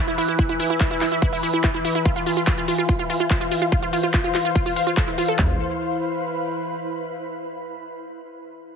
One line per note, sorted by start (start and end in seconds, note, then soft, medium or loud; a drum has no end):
0.00 5.43 E3 medium
0.00 2.05 E4 medium
0.00 2.06 B4 medium
0.00 2.05 B5 medium
0.08 0.12 E4 loud
0.08 closed hi-hat medium
0.18 0.23 E4 loud
0.18 open hi-hat loud
0.28 0.36 E4 loud
0.28 closed hi-hat soft
0.39 0.44 E4 loud
0.39 kick loud
0.39 closed hi-hat medium
0.49 0.54 E4 loud
0.49 closed hi-hat medium
0.60 0.67 E4 loud
0.60 open hi-hat loud
0.70 0.75 E4 loud
0.70 closed hi-hat medium
0.80 0.85 E4 loud
0.80 kick loud
0.80 clap loud
0.80 closed hi-hat medium
0.91 0.98 E4 loud
0.91 closed hi-hat medium
1.01 1.06 E4 loud
1.01 clap medium
1.01 open hi-hat loud
1.12 1.17 E4 loud
1.12 closed hi-hat soft
1.22 1.29 E4 loud
1.22 kick loud
1.22 closed hi-hat medium
1.33 1.37 E4 loud
1.33 open hi-hat medium
1.43 1.48 E4 loud
1.43 open hi-hat loud
1.53 1.61 E4 loud
1.53 closed hi-hat medium
1.64 1.69 E4 loud
1.64 kick loud
1.64 clap loud
1.64 closed hi-hat medium
1.74 1.79 E4 loud
1.74 closed hi-hat medium
1.85 1.92 E4 loud
1.85 open hi-hat loud
1.95 2.00 E4 loud
1.95 closed hi-hat medium
2.05 2.10 F4 loud
2.05 5.39 F5 medium
2.05 kick loud
2.05 closed hi-hat medium
2.16 2.23 F4 loud
2.16 closed hi-hat medium
2.20 5.39 C5 medium
2.26 2.31 F4 loud
2.26 open hi-hat loud
2.37 2.42 F4 loud
2.37 closed hi-hat medium
2.47 2.54 F4 loud
2.47 kick loud
2.47 clap loud
2.47 closed hi-hat medium
2.58 2.62 F4 loud
2.58 closed hi-hat medium
2.68 2.73 F4 loud
2.68 open hi-hat loud
2.78 2.86 F4 loud
2.78 closed hi-hat medium
2.89 2.94 F4 loud
2.89 5.39 C6 medium
2.89 kick loud
2.89 closed hi-hat medium
2.99 3.04 F4 loud
2.99 closed hi-hat medium
3.10 3.17 F4 loud
3.10 open hi-hat loud
3.20 3.25 F4 loud
3.20 closed hi-hat medium
3.30 3.35 F4 loud
3.30 kick loud
3.30 clap loud
3.30 closed hi-hat medium
3.41 3.48 F4 loud
3.41 closed hi-hat medium
3.51 3.56 F4 loud
3.51 open hi-hat loud
3.62 3.67 F4 loud
3.62 closed hi-hat medium
3.72 3.79 F4 loud
3.72 kick loud
3.72 closed hi-hat medium
3.83 3.87 F4 loud
3.83 closed hi-hat medium
3.93 3.98 F4 loud
3.93 open hi-hat loud
4.03 4.11 F4 loud
4.03 closed hi-hat medium
4.14 4.19 F4 loud
4.14 kick loud
4.14 clap loud
4.14 closed hi-hat medium
4.24 4.29 F4 loud
4.24 closed hi-hat medium
4.35 4.42 F4 loud
4.35 clap medium
4.35 open hi-hat loud
4.45 4.50 F4 loud
4.45 closed hi-hat medium
4.55 4.60 F4 loud
4.55 kick loud
4.55 closed hi-hat medium
4.66 4.73 F4 loud
4.66 open hi-hat medium
4.76 4.81 F5 loud
4.76 open hi-hat loud
4.87 4.94 F4 loud
4.87 closed hi-hat medium
4.97 5.02 A4 medium
4.97 kick loud
4.97 clap loud
4.97 closed hi-hat medium
5.08 5.12 E4 medium
5.08 closed hi-hat medium
5.18 5.25 F4 loud
5.18 open hi-hat loud
5.28 5.31 A4 loud
5.28 closed hi-hat medium
5.39 5.58 E1 loud
5.39 5.58 E4 medium
5.39 7.02 E4 medium
5.39 kick loud
5.39 clap medium
5.39 floor tom loud
5.45 7.02 B4 medium
5.51 7.01 B5 medium